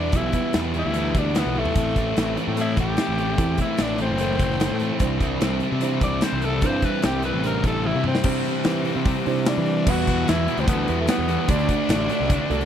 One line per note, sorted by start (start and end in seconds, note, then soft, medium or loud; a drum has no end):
0.00 0.11 E2 medium
0.00 0.12 B2 medium
0.00 0.12 E3 medium
0.00 0.12 G3 medium
0.00 0.12 B3 medium
0.00 0.18 D4 medium
0.00 0.13 E4 medium
0.12 0.32 B1 medium
0.12 0.32 E2 medium
0.12 0.32 B2 loud
0.12 0.33 E3 loud
0.12 0.33 G3 loud
0.12 0.33 B3 medium
0.12 0.79 B3 medium
0.12 0.34 E4 loud
0.12 0.80 E4 medium
0.12 0.80 G4 medium
0.12 kick loud
0.12 closed hi-hat medium
0.16 0.55 E4 loud
0.33 0.52 E2 medium
0.33 0.52 B2 loud
0.33 0.54 E3 medium
0.33 0.53 G3 medium
0.33 0.54 B3 medium
0.33 0.55 E4 medium
0.33 kick medium
0.33 closed hi-hat medium
0.53 0.72 E2 medium
0.53 0.82 E2 medium
0.53 0.73 B2 loud
0.53 0.74 E3 medium
0.53 0.74 G3 medium
0.53 0.74 B3 loud
0.53 0.75 E4 loud
0.53 snare loud
0.53 closed hi-hat medium
0.74 0.92 E2 medium
0.74 0.93 B2 medium
0.74 0.94 E3 medium
0.74 0.93 G3 medium
0.74 0.94 B3 medium
0.74 0.95 E4 medium
0.74 closed hi-hat medium
0.79 1.20 E4 medium
0.85 1.13 D2 medium
0.93 1.13 E2 medium
0.93 1.14 B2 medium
0.93 1.14 E3 medium
0.93 1.13 G3 medium
0.93 1.13 B3 medium
0.93 1.60 B3 medium
0.93 1.60 E4 medium
0.93 1.15 E4 medium
0.93 1.61 G4 medium
0.93 closed hi-hat medium
1.14 1.42 D2 medium
1.14 1.34 E2 loud
1.14 1.34 B2 loud
1.14 1.34 E3 medium
1.14 1.34 G3 loud
1.14 1.34 B3 loud
1.14 1.35 E4 loud
1.14 kick medium
1.14 closed hi-hat medium
1.18 1.40 D4 medium
1.34 1.55 E2 medium
1.34 1.55 B2 medium
1.34 1.55 E3 medium
1.34 1.54 G3 medium
1.34 1.55 B3 medium
1.34 1.60 B3 medium
1.34 1.56 E4 medium
1.34 snare loud
1.34 closed hi-hat loud
1.45 1.64 B1 medium
1.55 1.75 E2 medium
1.55 1.75 B2 medium
1.55 1.76 E3 medium
1.55 1.75 G3 medium
1.55 2.36 A3 loud
1.55 1.75 B3 medium
1.55 1.77 E4 medium
1.55 high tom medium
1.65 floor tom medium
1.75 2.12 A1 medium
1.75 1.96 A2 medium
1.75 1.96 E3 medium
1.75 1.97 A3 loud
1.75 2.41 C4 medium
1.75 1.97 C4 medium
1.75 2.41 E4 medium
1.75 1.98 E4 loud
1.75 2.41 A4 medium
1.75 kick loud
1.75 closed hi-hat loud
1.96 2.17 A2 medium
1.96 2.18 E3 medium
1.96 2.18 A3 medium
1.96 2.18 C4 medium
1.96 2.19 E4 medium
1.96 kick medium
1.96 closed hi-hat medium
2.17 2.36 A1 medium
2.17 2.37 A2 medium
2.17 2.38 E3 medium
2.17 2.38 A3 medium
2.17 2.38 C4 loud
2.17 2.39 E4 loud
2.17 snare loud
2.17 closed hi-hat loud
2.37 2.57 A2 medium
2.37 2.58 E3 medium
2.37 2.58 A3 medium
2.37 2.59 C4 medium
2.37 2.59 E4 medium
2.37 closed hi-hat medium
2.48 2.75 A2 medium
2.57 2.76 A2 medium
2.57 2.77 E3 medium
2.57 2.78 A3 medium
2.57 3.22 C4 medium
2.57 2.78 C4 medium
2.57 3.22 E4 medium
2.57 2.79 E4 medium
2.57 2.79 E4 loud
2.57 3.22 A4 medium
2.57 closed hi-hat loud
2.77 2.96 A1 loud
2.77 2.96 A2 medium
2.77 2.98 E3 medium
2.77 2.97 A3 loud
2.77 2.98 C4 loud
2.77 2.99 E4 loud
2.77 3.58 G4 medium
2.77 kick medium
2.77 closed hi-hat medium
2.97 3.17 A2 medium
2.97 3.18 E3 medium
2.97 3.18 A3 medium
2.97 3.19 C4 medium
2.97 3.19 E4 medium
2.97 snare loud
2.97 closed hi-hat medium
3.09 3.36 A1 medium
3.18 3.38 A2 medium
3.18 3.39 E3 medium
3.18 3.38 A3 medium
3.18 3.40 C4 medium
3.18 3.40 E4 medium
3.18 closed hi-hat medium
3.38 3.57 E2 medium
3.38 3.59 A2 medium
3.38 3.60 E3 loud
3.38 3.60 A3 loud
3.38 4.04 C4 medium
3.38 3.61 C4 loud
3.38 4.04 E4 medium
3.38 3.62 E4 loud
3.38 4.04 A4 loud
3.38 kick loud
3.38 closed hi-hat medium
3.57 3.79 A2 medium
3.57 3.80 E3 medium
3.57 3.80 A3 medium
3.57 3.84 E4 medium
3.57 kick medium
3.57 closed hi-hat medium
3.62 3.81 C4 medium
3.62 3.81 E4 medium
3.77 4.07 A1 medium
3.77 3.99 A2 medium
3.77 4.00 E3 medium
3.77 4.00 A3 loud
3.77 4.01 C4 loud
3.77 snare loud
3.77 closed hi-hat medium
3.82 4.01 D4 medium
3.82 4.01 E4 loud
3.98 4.19 A2 medium
3.98 4.21 E3 medium
3.98 4.20 A3 medium
3.98 4.21 C4 medium
3.98 5.19 C4 loud
3.98 4.21 E4 medium
3.98 closed hi-hat medium
4.10 4.37 F#1 medium
4.18 4.38 A2 medium
4.18 4.40 E3 medium
4.18 4.40 A3 medium
4.18 4.85 C4 medium
4.18 4.40 C4 medium
4.18 4.85 E4 medium
4.18 4.41 E4 medium
4.18 4.85 A4 medium
4.18 closed hi-hat medium
4.39 4.67 F#1 loud
4.39 4.59 A2 loud
4.39 4.60 E3 loud
4.39 4.60 A3 loud
4.39 4.61 C4 loud
4.39 4.62 E4 loud
4.39 kick medium
4.39 closed hi-hat medium
4.51 snare soft
4.60 4.80 A2 medium
4.60 4.81 E3 medium
4.60 4.80 A3 medium
4.60 4.82 C4 medium
4.60 4.82 E4 medium
4.60 snare loud
4.60 closed hi-hat loud
4.71 4.89 A2 medium
4.80 5.00 A2 medium
4.80 5.01 E3 medium
4.80 5.00 A3 medium
4.80 5.02 C4 medium
4.80 5.02 E4 medium
4.80 closed hi-hat medium
5.00 5.37 C2 medium
5.00 5.20 C3 loud
5.00 5.21 E3 loud
5.00 5.21 G3 loud
5.00 5.22 C4 loud
5.00 5.66 D4 medium
5.00 5.66 E4 medium
5.00 5.22 E4 loud
5.00 5.66 C5 loud
5.00 kick loud
5.00 closed hi-hat loud
5.21 5.41 C3 medium
5.21 5.42 E3 medium
5.21 5.42 G3 medium
5.21 5.42 C4 medium
5.21 5.43 E4 medium
5.21 kick medium
5.21 closed hi-hat medium
5.41 5.60 C2 loud
5.41 5.61 C3 medium
5.41 5.62 E3 medium
5.41 5.62 G3 loud
5.41 5.63 C4 loud
5.41 5.63 E4 loud
5.41 snare loud
5.41 closed hi-hat loud
5.60 5.82 C3 medium
5.60 5.83 E3 medium
5.60 5.83 G3 medium
5.60 5.83 C4 medium
5.60 5.84 E4 medium
5.60 closed hi-hat medium
5.72 5.99 C3 medium
5.81 6.02 C3 medium
5.81 6.03 E3 medium
5.81 6.03 G3 medium
5.81 6.04 C4 medium
5.81 6.47 D4 medium
5.81 6.47 E4 medium
5.81 6.04 E4 loud
5.81 6.47 C5 medium
5.81 closed hi-hat loud
6.01 6.20 C2 loud
6.01 6.22 C3 loud
6.01 6.23 E3 loud
6.01 6.23 G3 loud
6.01 6.24 C4 loud
6.01 6.25 E4 loud
6.01 6.25 D5 medium
6.01 kick medium
6.01 closed hi-hat medium
6.21 6.43 C3 medium
6.21 6.43 E3 medium
6.21 6.44 G3 medium
6.21 6.45 C4 medium
6.21 6.45 E4 medium
6.21 6.46 C5 medium
6.21 snare loud
6.21 closed hi-hat loud
6.33 6.60 C2 medium
6.42 6.62 C3 medium
6.42 6.63 E3 medium
6.42 6.63 G3 medium
6.42 6.63 C4 medium
6.42 6.63 E4 loud
6.42 6.68 A4 medium
6.42 snare soft
6.42 closed hi-hat medium
6.62 6.81 G2 medium
6.62 6.82 C3 medium
6.62 6.83 E3 loud
6.62 6.83 G3 loud
6.62 6.84 C4 loud
6.62 7.28 D4 medium
6.62 7.29 E4 medium
6.62 6.84 E4 loud
6.62 7.28 C5 medium
6.62 kick loud
6.62 closed hi-hat medium
6.66 6.86 C5 loud
6.82 7.03 C3 medium
6.82 7.03 E3 medium
6.82 7.03 G3 medium
6.82 7.04 C4 loud
6.82 7.04 E4 medium
6.82 7.07 B4 medium
6.82 kick medium
6.82 closed hi-hat medium
7.02 7.31 C2 medium
7.02 7.23 C3 loud
7.02 7.23 E3 loud
7.02 7.24 G3 loud
7.02 7.24 C4 loud
7.02 7.24 E4 loud
7.02 7.24 G4 loud
7.02 snare loud
7.02 closed hi-hat medium
7.22 7.43 C3 medium
7.22 7.43 E3 medium
7.22 7.44 G3 loud
7.22 7.44 C4 medium
7.22 7.44 E4 medium
7.22 7.44 B4 medium
7.22 closed hi-hat medium
7.34 7.61 A1 medium
7.44 7.64 C3 medium
7.44 7.64 E3 medium
7.44 7.65 G3 medium
7.44 7.65 C4 medium
7.44 8.09 D4 medium
7.44 8.09 E4 medium
7.44 7.66 E4 medium
7.44 7.65 A#4 medium
7.44 8.10 C5 medium
7.44 closed hi-hat loud
7.64 7.92 A1 medium
7.64 7.83 C3 medium
7.64 7.84 E3 loud
7.64 7.84 G3 loud
7.64 7.84 C4 loud
7.64 7.85 E4 loud
7.64 7.88 A4 loud
7.64 kick medium
7.64 closed hi-hat medium
7.84 8.03 C3 medium
7.84 8.03 E3 medium
7.84 8.04 G3 medium
7.84 8.04 C4 medium
7.84 8.04 E4 medium
7.84 8.05 E4 medium
7.84 high tom medium
7.95 8.13 C3 medium
8.04 8.23 C3 medium
8.04 8.24 E3 medium
8.04 8.24 G3 medium
8.04 8.24 C4 medium
8.04 8.26 C4 loud
8.04 8.24 E4 medium
8.04 mid tom medium
8.15 snare medium
8.24 8.65 C3 loud
8.24 8.43 C3 medium
8.24 8.64 E3 medium
8.24 8.47 G3 medium
8.24 8.45 C4 loud
8.24 8.90 D4 medium
8.24 8.90 E4 medium
8.24 8.44 E4 medium
8.24 8.90 G4 medium
8.24 8.90 C5 medium
8.24 kick loud
8.24 crash loud
8.44 8.66 C4 medium
8.44 8.66 E4 medium
8.44 open hi-hat medium
8.48 8.65 G3 medium
8.64 9.05 E3 medium
8.64 8.93 E3 medium
8.64 8.86 G3 medium
8.64 8.85 C4 medium
8.64 8.83 E4 medium
8.64 snare loud
8.64 open hi-hat medium
8.85 9.05 G3 medium
8.85 9.06 C4 medium
8.85 9.06 E4 medium
8.85 open hi-hat medium
8.96 9.14 C3 medium
9.05 9.46 C3 loud
9.05 9.46 E3 medium
9.05 9.27 G3 loud
9.05 9.26 C4 loud
9.05 9.24 E4 loud
9.05 kick loud
9.05 open hi-hat medium
9.26 9.45 C3 medium
9.26 9.46 G3 medium
9.26 9.47 C4 medium
9.26 9.75 D4 loud
9.26 9.48 E4 medium
9.26 9.76 E4 medium
9.26 9.76 G4 medium
9.26 9.76 C5 loud
9.26 snare soft
9.26 open hi-hat medium
9.37 snare soft
9.45 9.86 E3 medium
9.45 9.86 G3 medium
9.45 9.87 C4 medium
9.45 9.91 D4 medium
9.45 9.87 E4 medium
9.45 snare loud
9.45 open hi-hat medium
9.58 9.85 E3 medium
9.66 open hi-hat medium
9.87 10.23 E2 loud
9.87 10.05 E2 loud
9.87 10.05 B2 loud
9.87 10.07 E3 loud
9.87 10.52 G3 medium
9.87 10.08 G3 medium
9.87 10.52 B3 medium
9.87 10.08 B3 loud
9.87 10.52 E4 medium
9.87 10.08 E4 loud
9.87 10.31 F#4 loud
9.87 10.52 B4 medium
9.87 kick loud
9.87 crash loud
9.98 closed hi-hat soft
10.06 10.26 E2 medium
10.06 10.26 B2 medium
10.06 10.27 E3 medium
10.06 10.27 G3 loud
10.06 10.28 B3 medium
10.06 10.28 E4 medium
10.06 kick medium
10.06 closed hi-hat medium
10.27 10.46 E2 medium
10.27 10.47 E2 loud
10.27 10.47 B2 medium
10.27 10.47 E3 medium
10.27 10.47 G3 medium
10.27 10.48 B3 medium
10.27 10.48 E4 medium
10.27 10.61 E4 medium
10.27 snare loud
10.27 closed hi-hat loud
10.48 10.67 E2 loud
10.48 10.67 B2 loud
10.48 10.68 E3 medium
10.48 10.68 G3 loud
10.48 10.69 B3 medium
10.48 10.69 E4 loud
10.48 closed hi-hat medium
10.58 10.85 D2 medium
10.58 10.67 C4 medium
10.58 closed hi-hat medium
10.68 10.87 E2 medium
10.68 10.87 B2 medium
10.68 10.87 E3 medium
10.68 10.88 G3 medium
10.68 10.96 B3 medium
10.68 10.88 B3 medium
10.68 10.88 E4 medium
10.68 kick loud
10.68 closed hi-hat loud
10.88 11.08 E2 loud
10.88 11.07 E2 loud
10.88 11.08 B2 loud
10.88 11.07 E3 loud
10.88 11.08 G3 loud
10.88 11.21 B3 medium
10.88 11.08 B3 loud
10.88 11.21 E4 medium
10.88 11.09 E4 loud
10.88 11.21 G4 medium
10.88 11.21 B4 medium
10.88 closed hi-hat medium
11.01 11.09 A3 medium
11.08 11.28 E2 medium
11.08 11.28 B2 medium
11.08 11.27 E3 medium
11.08 11.28 G3 medium
11.08 11.51 B3 loud
11.08 11.28 B3 medium
11.08 11.28 E4 medium
11.08 snare loud
11.08 closed hi-hat loud
11.19 11.37 E2 medium
11.28 11.48 E2 medium
11.28 11.48 B2 medium
11.28 11.47 E3 medium
11.28 11.48 G3 medium
11.28 11.48 B3 medium
11.28 11.46 B3 medium
11.28 11.48 E4 medium
11.28 11.45 E4 medium
11.28 11.45 G4 medium
11.28 11.46 B4 medium
11.28 closed hi-hat medium
11.48 11.67 D2 medium
11.48 11.67 D3 loud
11.48 11.68 A3 loud
11.48 12.14 A3 medium
11.48 11.68 D4 loud
11.48 12.65 D4 loud
11.48 12.14 D4 medium
11.48 11.69 F#4 loud
11.48 12.14 F#4 medium
11.48 12.14 A4 medium
11.48 kick loud
11.48 closed hi-hat loud
11.59 closed hi-hat medium
11.69 11.89 D3 medium
11.69 11.90 A3 medium
11.69 11.90 D4 medium
11.69 11.90 F#4 loud
11.69 kick medium
11.69 closed hi-hat medium
11.89 12.07 A1 loud
11.89 12.09 D3 medium
11.89 12.10 A3 medium
11.89 12.10 D4 medium
11.89 12.10 F#4 loud
11.89 snare loud
11.89 closed hi-hat loud
12.10 12.30 D3 loud
12.10 12.30 A3 loud
12.10 12.31 D4 loud
12.10 12.31 F#4 loud
12.10 closed hi-hat medium
12.20 12.38 C2 medium
12.30 12.50 D3 medium
12.30 12.50 A3 medium
12.30 12.50 D4 medium
12.30 12.51 F#4 loud
12.30 kick loud
12.30 closed hi-hat loud
12.50 12.65 C2 loud
12.50 12.65 D3 loud
12.50 12.65 A3 loud
12.50 12.65 D4 medium
12.50 12.65 D4 loud
12.50 12.65 F#4 medium
12.50 12.65 F#4 loud
12.50 12.65 A4 loud
12.50 closed hi-hat medium
12.61 closed hi-hat medium